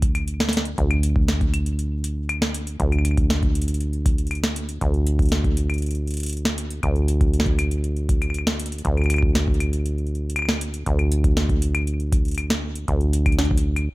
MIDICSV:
0, 0, Header, 1, 3, 480
1, 0, Start_track
1, 0, Tempo, 504202
1, 743, Time_signature, 4, 2, 24, 8
1, 13275, End_track
2, 0, Start_track
2, 0, Title_t, "Acid bass"
2, 0, Program_c, 0, 38
2, 0, Note_on_c, 0, 38, 83
2, 719, Note_off_c, 0, 38, 0
2, 743, Note_on_c, 0, 38, 81
2, 2639, Note_off_c, 0, 38, 0
2, 2663, Note_on_c, 0, 38, 86
2, 4559, Note_off_c, 0, 38, 0
2, 4582, Note_on_c, 0, 38, 85
2, 6479, Note_off_c, 0, 38, 0
2, 6503, Note_on_c, 0, 38, 81
2, 8399, Note_off_c, 0, 38, 0
2, 8423, Note_on_c, 0, 38, 83
2, 10319, Note_off_c, 0, 38, 0
2, 10343, Note_on_c, 0, 38, 81
2, 12239, Note_off_c, 0, 38, 0
2, 12263, Note_on_c, 0, 38, 83
2, 13223, Note_off_c, 0, 38, 0
2, 13275, End_track
3, 0, Start_track
3, 0, Title_t, "Drums"
3, 22, Note_on_c, 9, 42, 88
3, 23, Note_on_c, 9, 36, 104
3, 118, Note_off_c, 9, 36, 0
3, 118, Note_off_c, 9, 42, 0
3, 143, Note_on_c, 9, 42, 55
3, 143, Note_on_c, 9, 75, 53
3, 238, Note_off_c, 9, 42, 0
3, 238, Note_off_c, 9, 75, 0
3, 263, Note_on_c, 9, 42, 52
3, 358, Note_off_c, 9, 42, 0
3, 383, Note_on_c, 9, 38, 105
3, 383, Note_on_c, 9, 42, 26
3, 463, Note_off_c, 9, 38, 0
3, 463, Note_on_c, 9, 38, 86
3, 478, Note_off_c, 9, 42, 0
3, 503, Note_on_c, 9, 42, 94
3, 543, Note_off_c, 9, 38, 0
3, 543, Note_on_c, 9, 38, 79
3, 598, Note_off_c, 9, 42, 0
3, 622, Note_on_c, 9, 42, 55
3, 638, Note_off_c, 9, 38, 0
3, 718, Note_off_c, 9, 42, 0
3, 743, Note_on_c, 9, 36, 85
3, 743, Note_on_c, 9, 42, 56
3, 838, Note_off_c, 9, 36, 0
3, 838, Note_off_c, 9, 42, 0
3, 863, Note_on_c, 9, 42, 27
3, 863, Note_on_c, 9, 75, 74
3, 958, Note_off_c, 9, 42, 0
3, 958, Note_off_c, 9, 75, 0
3, 983, Note_on_c, 9, 42, 100
3, 1078, Note_off_c, 9, 42, 0
3, 1103, Note_on_c, 9, 36, 120
3, 1198, Note_off_c, 9, 36, 0
3, 1223, Note_on_c, 9, 38, 118
3, 1223, Note_on_c, 9, 42, 52
3, 1318, Note_off_c, 9, 38, 0
3, 1318, Note_off_c, 9, 42, 0
3, 1343, Note_on_c, 9, 36, 103
3, 1343, Note_on_c, 9, 42, 26
3, 1438, Note_off_c, 9, 36, 0
3, 1438, Note_off_c, 9, 42, 0
3, 1462, Note_on_c, 9, 42, 89
3, 1462, Note_on_c, 9, 75, 53
3, 1558, Note_off_c, 9, 42, 0
3, 1558, Note_off_c, 9, 75, 0
3, 1583, Note_on_c, 9, 42, 53
3, 1678, Note_off_c, 9, 42, 0
3, 1702, Note_on_c, 9, 42, 53
3, 1798, Note_off_c, 9, 42, 0
3, 1942, Note_on_c, 9, 42, 90
3, 2038, Note_off_c, 9, 42, 0
3, 2183, Note_on_c, 9, 42, 53
3, 2183, Note_on_c, 9, 75, 78
3, 2278, Note_off_c, 9, 42, 0
3, 2278, Note_off_c, 9, 75, 0
3, 2303, Note_on_c, 9, 38, 116
3, 2303, Note_on_c, 9, 42, 27
3, 2398, Note_off_c, 9, 38, 0
3, 2398, Note_off_c, 9, 42, 0
3, 2422, Note_on_c, 9, 42, 100
3, 2517, Note_off_c, 9, 42, 0
3, 2542, Note_on_c, 9, 42, 54
3, 2637, Note_off_c, 9, 42, 0
3, 2662, Note_on_c, 9, 36, 91
3, 2662, Note_on_c, 9, 42, 54
3, 2758, Note_off_c, 9, 36, 0
3, 2758, Note_off_c, 9, 42, 0
3, 2782, Note_on_c, 9, 42, 25
3, 2782, Note_on_c, 9, 75, 45
3, 2842, Note_off_c, 9, 75, 0
3, 2842, Note_on_c, 9, 75, 38
3, 2878, Note_off_c, 9, 42, 0
3, 2902, Note_off_c, 9, 75, 0
3, 2902, Note_on_c, 9, 42, 94
3, 2902, Note_on_c, 9, 75, 32
3, 2963, Note_off_c, 9, 75, 0
3, 2963, Note_on_c, 9, 75, 27
3, 2998, Note_off_c, 9, 42, 0
3, 3023, Note_on_c, 9, 36, 124
3, 3023, Note_on_c, 9, 42, 52
3, 3058, Note_off_c, 9, 75, 0
3, 3118, Note_off_c, 9, 36, 0
3, 3118, Note_off_c, 9, 42, 0
3, 3143, Note_on_c, 9, 38, 118
3, 3143, Note_on_c, 9, 42, 52
3, 3238, Note_off_c, 9, 38, 0
3, 3238, Note_off_c, 9, 42, 0
3, 3263, Note_on_c, 9, 36, 108
3, 3263, Note_on_c, 9, 42, 26
3, 3358, Note_off_c, 9, 36, 0
3, 3358, Note_off_c, 9, 42, 0
3, 3382, Note_on_c, 9, 42, 85
3, 3442, Note_off_c, 9, 42, 0
3, 3442, Note_on_c, 9, 42, 71
3, 3503, Note_off_c, 9, 42, 0
3, 3503, Note_on_c, 9, 42, 63
3, 3562, Note_off_c, 9, 42, 0
3, 3562, Note_on_c, 9, 42, 49
3, 3623, Note_off_c, 9, 42, 0
3, 3623, Note_on_c, 9, 42, 50
3, 3718, Note_off_c, 9, 42, 0
3, 3743, Note_on_c, 9, 42, 25
3, 3838, Note_off_c, 9, 42, 0
3, 3863, Note_on_c, 9, 36, 115
3, 3863, Note_on_c, 9, 42, 94
3, 3958, Note_off_c, 9, 36, 0
3, 3958, Note_off_c, 9, 42, 0
3, 3983, Note_on_c, 9, 42, 50
3, 4063, Note_off_c, 9, 42, 0
3, 4063, Note_on_c, 9, 42, 39
3, 4103, Note_off_c, 9, 42, 0
3, 4103, Note_on_c, 9, 42, 52
3, 4103, Note_on_c, 9, 75, 47
3, 4143, Note_off_c, 9, 42, 0
3, 4143, Note_on_c, 9, 42, 33
3, 4198, Note_off_c, 9, 75, 0
3, 4223, Note_off_c, 9, 42, 0
3, 4223, Note_on_c, 9, 38, 122
3, 4223, Note_on_c, 9, 42, 24
3, 4318, Note_off_c, 9, 38, 0
3, 4318, Note_off_c, 9, 42, 0
3, 4343, Note_on_c, 9, 42, 94
3, 4438, Note_off_c, 9, 42, 0
3, 4462, Note_on_c, 9, 42, 52
3, 4558, Note_off_c, 9, 42, 0
3, 4582, Note_on_c, 9, 36, 85
3, 4583, Note_on_c, 9, 42, 52
3, 4678, Note_off_c, 9, 36, 0
3, 4678, Note_off_c, 9, 42, 0
3, 4703, Note_on_c, 9, 42, 24
3, 4798, Note_off_c, 9, 42, 0
3, 4823, Note_on_c, 9, 42, 89
3, 4918, Note_off_c, 9, 42, 0
3, 4942, Note_on_c, 9, 36, 120
3, 4943, Note_on_c, 9, 42, 23
3, 4973, Note_off_c, 9, 42, 0
3, 4973, Note_on_c, 9, 42, 29
3, 5003, Note_off_c, 9, 42, 0
3, 5003, Note_on_c, 9, 42, 34
3, 5033, Note_off_c, 9, 42, 0
3, 5033, Note_on_c, 9, 42, 42
3, 5038, Note_off_c, 9, 36, 0
3, 5063, Note_off_c, 9, 42, 0
3, 5063, Note_on_c, 9, 38, 111
3, 5063, Note_on_c, 9, 42, 51
3, 5158, Note_off_c, 9, 38, 0
3, 5158, Note_off_c, 9, 42, 0
3, 5182, Note_on_c, 9, 36, 104
3, 5183, Note_on_c, 9, 42, 24
3, 5278, Note_off_c, 9, 36, 0
3, 5278, Note_off_c, 9, 42, 0
3, 5303, Note_on_c, 9, 42, 85
3, 5398, Note_off_c, 9, 42, 0
3, 5423, Note_on_c, 9, 42, 23
3, 5423, Note_on_c, 9, 75, 49
3, 5463, Note_off_c, 9, 42, 0
3, 5463, Note_on_c, 9, 42, 28
3, 5503, Note_off_c, 9, 42, 0
3, 5503, Note_on_c, 9, 42, 31
3, 5518, Note_off_c, 9, 75, 0
3, 5543, Note_off_c, 9, 42, 0
3, 5543, Note_on_c, 9, 42, 49
3, 5583, Note_off_c, 9, 42, 0
3, 5583, Note_on_c, 9, 42, 38
3, 5623, Note_off_c, 9, 42, 0
3, 5623, Note_on_c, 9, 42, 42
3, 5663, Note_off_c, 9, 42, 0
3, 5663, Note_on_c, 9, 42, 25
3, 5758, Note_off_c, 9, 42, 0
3, 5783, Note_on_c, 9, 42, 36
3, 5813, Note_off_c, 9, 42, 0
3, 5813, Note_on_c, 9, 42, 43
3, 5843, Note_off_c, 9, 42, 0
3, 5843, Note_on_c, 9, 42, 48
3, 5873, Note_off_c, 9, 42, 0
3, 5873, Note_on_c, 9, 42, 55
3, 5903, Note_off_c, 9, 42, 0
3, 5903, Note_on_c, 9, 42, 62
3, 5933, Note_off_c, 9, 42, 0
3, 5933, Note_on_c, 9, 42, 70
3, 5963, Note_off_c, 9, 42, 0
3, 5963, Note_on_c, 9, 42, 74
3, 5983, Note_off_c, 9, 42, 0
3, 5983, Note_on_c, 9, 42, 38
3, 5993, Note_off_c, 9, 42, 0
3, 5993, Note_on_c, 9, 42, 75
3, 6023, Note_off_c, 9, 42, 0
3, 6023, Note_on_c, 9, 42, 51
3, 6063, Note_off_c, 9, 42, 0
3, 6063, Note_on_c, 9, 42, 30
3, 6143, Note_off_c, 9, 42, 0
3, 6143, Note_on_c, 9, 38, 114
3, 6143, Note_on_c, 9, 42, 25
3, 6238, Note_off_c, 9, 38, 0
3, 6238, Note_off_c, 9, 42, 0
3, 6263, Note_on_c, 9, 42, 96
3, 6358, Note_off_c, 9, 42, 0
3, 6383, Note_on_c, 9, 42, 52
3, 6478, Note_off_c, 9, 42, 0
3, 6502, Note_on_c, 9, 36, 84
3, 6503, Note_on_c, 9, 42, 51
3, 6503, Note_on_c, 9, 75, 53
3, 6598, Note_off_c, 9, 36, 0
3, 6598, Note_off_c, 9, 42, 0
3, 6598, Note_off_c, 9, 75, 0
3, 6623, Note_on_c, 9, 42, 24
3, 6718, Note_off_c, 9, 42, 0
3, 6743, Note_on_c, 9, 42, 90
3, 6838, Note_off_c, 9, 42, 0
3, 6863, Note_on_c, 9, 36, 119
3, 6863, Note_on_c, 9, 42, 48
3, 6958, Note_off_c, 9, 36, 0
3, 6958, Note_off_c, 9, 42, 0
3, 6983, Note_on_c, 9, 42, 50
3, 7043, Note_on_c, 9, 38, 110
3, 7078, Note_off_c, 9, 42, 0
3, 7103, Note_on_c, 9, 36, 98
3, 7103, Note_on_c, 9, 42, 23
3, 7138, Note_off_c, 9, 38, 0
3, 7198, Note_off_c, 9, 36, 0
3, 7198, Note_off_c, 9, 42, 0
3, 7223, Note_on_c, 9, 42, 84
3, 7223, Note_on_c, 9, 75, 73
3, 7318, Note_off_c, 9, 42, 0
3, 7318, Note_off_c, 9, 75, 0
3, 7343, Note_on_c, 9, 42, 51
3, 7438, Note_off_c, 9, 42, 0
3, 7463, Note_on_c, 9, 42, 48
3, 7558, Note_off_c, 9, 42, 0
3, 7583, Note_on_c, 9, 42, 23
3, 7678, Note_off_c, 9, 42, 0
3, 7703, Note_on_c, 9, 36, 101
3, 7703, Note_on_c, 9, 42, 79
3, 7798, Note_off_c, 9, 36, 0
3, 7798, Note_off_c, 9, 42, 0
3, 7823, Note_on_c, 9, 42, 49
3, 7823, Note_on_c, 9, 75, 47
3, 7903, Note_off_c, 9, 75, 0
3, 7903, Note_on_c, 9, 75, 37
3, 7918, Note_off_c, 9, 42, 0
3, 7943, Note_on_c, 9, 42, 48
3, 7983, Note_off_c, 9, 75, 0
3, 7983, Note_on_c, 9, 75, 31
3, 8038, Note_off_c, 9, 42, 0
3, 8063, Note_on_c, 9, 38, 113
3, 8063, Note_on_c, 9, 42, 23
3, 8078, Note_off_c, 9, 75, 0
3, 8158, Note_off_c, 9, 38, 0
3, 8158, Note_off_c, 9, 42, 0
3, 8183, Note_on_c, 9, 42, 89
3, 8243, Note_off_c, 9, 42, 0
3, 8243, Note_on_c, 9, 42, 69
3, 8303, Note_off_c, 9, 42, 0
3, 8303, Note_on_c, 9, 42, 53
3, 8363, Note_off_c, 9, 42, 0
3, 8363, Note_on_c, 9, 42, 47
3, 8423, Note_off_c, 9, 42, 0
3, 8423, Note_on_c, 9, 36, 83
3, 8423, Note_on_c, 9, 42, 53
3, 8518, Note_off_c, 9, 36, 0
3, 8518, Note_off_c, 9, 42, 0
3, 8543, Note_on_c, 9, 42, 11
3, 8543, Note_on_c, 9, 75, 33
3, 8583, Note_off_c, 9, 75, 0
3, 8583, Note_on_c, 9, 75, 39
3, 8603, Note_off_c, 9, 42, 0
3, 8603, Note_on_c, 9, 42, 14
3, 8623, Note_off_c, 9, 75, 0
3, 8623, Note_on_c, 9, 75, 46
3, 8663, Note_off_c, 9, 42, 0
3, 8663, Note_off_c, 9, 75, 0
3, 8663, Note_on_c, 9, 42, 90
3, 8663, Note_on_c, 9, 75, 56
3, 8703, Note_off_c, 9, 75, 0
3, 8703, Note_on_c, 9, 75, 63
3, 8743, Note_off_c, 9, 75, 0
3, 8743, Note_on_c, 9, 75, 67
3, 8758, Note_off_c, 9, 42, 0
3, 8783, Note_on_c, 9, 36, 119
3, 8838, Note_off_c, 9, 75, 0
3, 8878, Note_off_c, 9, 36, 0
3, 8903, Note_on_c, 9, 38, 116
3, 8903, Note_on_c, 9, 42, 48
3, 8998, Note_off_c, 9, 38, 0
3, 8998, Note_off_c, 9, 42, 0
3, 9023, Note_on_c, 9, 36, 98
3, 9083, Note_on_c, 9, 42, 25
3, 9118, Note_off_c, 9, 36, 0
3, 9143, Note_off_c, 9, 42, 0
3, 9143, Note_on_c, 9, 42, 84
3, 9143, Note_on_c, 9, 75, 52
3, 9238, Note_off_c, 9, 42, 0
3, 9238, Note_off_c, 9, 75, 0
3, 9263, Note_on_c, 9, 42, 50
3, 9358, Note_off_c, 9, 42, 0
3, 9383, Note_on_c, 9, 42, 46
3, 9478, Note_off_c, 9, 42, 0
3, 9503, Note_on_c, 9, 42, 11
3, 9583, Note_off_c, 9, 42, 0
3, 9583, Note_on_c, 9, 42, 15
3, 9663, Note_off_c, 9, 42, 0
3, 9663, Note_on_c, 9, 42, 18
3, 9758, Note_off_c, 9, 42, 0
3, 9803, Note_on_c, 9, 42, 49
3, 9863, Note_off_c, 9, 42, 0
3, 9863, Note_on_c, 9, 42, 49
3, 9863, Note_on_c, 9, 75, 75
3, 9893, Note_off_c, 9, 75, 0
3, 9893, Note_on_c, 9, 75, 57
3, 9952, Note_off_c, 9, 75, 0
3, 9952, Note_on_c, 9, 75, 39
3, 9958, Note_off_c, 9, 42, 0
3, 9983, Note_off_c, 9, 75, 0
3, 9983, Note_on_c, 9, 38, 103
3, 9983, Note_on_c, 9, 42, 24
3, 9983, Note_on_c, 9, 75, 33
3, 10043, Note_off_c, 9, 75, 0
3, 10043, Note_on_c, 9, 75, 22
3, 10073, Note_off_c, 9, 75, 0
3, 10073, Note_on_c, 9, 75, 17
3, 10078, Note_off_c, 9, 38, 0
3, 10078, Note_off_c, 9, 42, 0
3, 10103, Note_on_c, 9, 42, 86
3, 10168, Note_off_c, 9, 75, 0
3, 10198, Note_off_c, 9, 42, 0
3, 10223, Note_on_c, 9, 42, 49
3, 10318, Note_off_c, 9, 42, 0
3, 10343, Note_on_c, 9, 36, 78
3, 10343, Note_on_c, 9, 42, 53
3, 10438, Note_off_c, 9, 36, 0
3, 10438, Note_off_c, 9, 42, 0
3, 10463, Note_on_c, 9, 42, 24
3, 10463, Note_on_c, 9, 75, 52
3, 10558, Note_off_c, 9, 42, 0
3, 10558, Note_off_c, 9, 75, 0
3, 10583, Note_on_c, 9, 42, 95
3, 10678, Note_off_c, 9, 42, 0
3, 10703, Note_on_c, 9, 36, 114
3, 10703, Note_on_c, 9, 42, 51
3, 10798, Note_off_c, 9, 36, 0
3, 10798, Note_off_c, 9, 42, 0
3, 10823, Note_on_c, 9, 38, 104
3, 10823, Note_on_c, 9, 42, 53
3, 10918, Note_off_c, 9, 38, 0
3, 10918, Note_off_c, 9, 42, 0
3, 10943, Note_on_c, 9, 36, 101
3, 10943, Note_on_c, 9, 42, 26
3, 11038, Note_off_c, 9, 36, 0
3, 11038, Note_off_c, 9, 42, 0
3, 11063, Note_on_c, 9, 42, 87
3, 11158, Note_off_c, 9, 42, 0
3, 11183, Note_on_c, 9, 42, 52
3, 11183, Note_on_c, 9, 75, 81
3, 11278, Note_off_c, 9, 42, 0
3, 11278, Note_off_c, 9, 75, 0
3, 11303, Note_on_c, 9, 42, 49
3, 11398, Note_off_c, 9, 42, 0
3, 11423, Note_on_c, 9, 42, 25
3, 11518, Note_off_c, 9, 42, 0
3, 11543, Note_on_c, 9, 36, 105
3, 11543, Note_on_c, 9, 42, 88
3, 11638, Note_off_c, 9, 36, 0
3, 11638, Note_off_c, 9, 42, 0
3, 11663, Note_on_c, 9, 42, 23
3, 11693, Note_off_c, 9, 42, 0
3, 11693, Note_on_c, 9, 42, 28
3, 11723, Note_off_c, 9, 42, 0
3, 11723, Note_on_c, 9, 42, 36
3, 11753, Note_off_c, 9, 42, 0
3, 11753, Note_on_c, 9, 42, 43
3, 11783, Note_off_c, 9, 42, 0
3, 11783, Note_on_c, 9, 42, 49
3, 11783, Note_on_c, 9, 75, 49
3, 11878, Note_off_c, 9, 42, 0
3, 11878, Note_off_c, 9, 75, 0
3, 11902, Note_on_c, 9, 38, 113
3, 11902, Note_on_c, 9, 42, 25
3, 11998, Note_off_c, 9, 38, 0
3, 11998, Note_off_c, 9, 42, 0
3, 12143, Note_on_c, 9, 42, 53
3, 12238, Note_off_c, 9, 42, 0
3, 12263, Note_on_c, 9, 36, 82
3, 12263, Note_on_c, 9, 42, 55
3, 12358, Note_off_c, 9, 36, 0
3, 12358, Note_off_c, 9, 42, 0
3, 12383, Note_on_c, 9, 42, 25
3, 12478, Note_off_c, 9, 42, 0
3, 12503, Note_on_c, 9, 42, 94
3, 12598, Note_off_c, 9, 42, 0
3, 12623, Note_on_c, 9, 36, 121
3, 12623, Note_on_c, 9, 42, 52
3, 12623, Note_on_c, 9, 75, 85
3, 12683, Note_off_c, 9, 42, 0
3, 12683, Note_on_c, 9, 42, 43
3, 12718, Note_off_c, 9, 36, 0
3, 12718, Note_off_c, 9, 75, 0
3, 12743, Note_off_c, 9, 42, 0
3, 12743, Note_on_c, 9, 38, 112
3, 12743, Note_on_c, 9, 42, 52
3, 12803, Note_off_c, 9, 42, 0
3, 12803, Note_on_c, 9, 42, 26
3, 12838, Note_off_c, 9, 38, 0
3, 12863, Note_on_c, 9, 36, 104
3, 12898, Note_off_c, 9, 42, 0
3, 12923, Note_on_c, 9, 42, 90
3, 12958, Note_off_c, 9, 36, 0
3, 13018, Note_off_c, 9, 42, 0
3, 13103, Note_on_c, 9, 42, 54
3, 13103, Note_on_c, 9, 75, 57
3, 13198, Note_off_c, 9, 42, 0
3, 13198, Note_off_c, 9, 75, 0
3, 13275, End_track
0, 0, End_of_file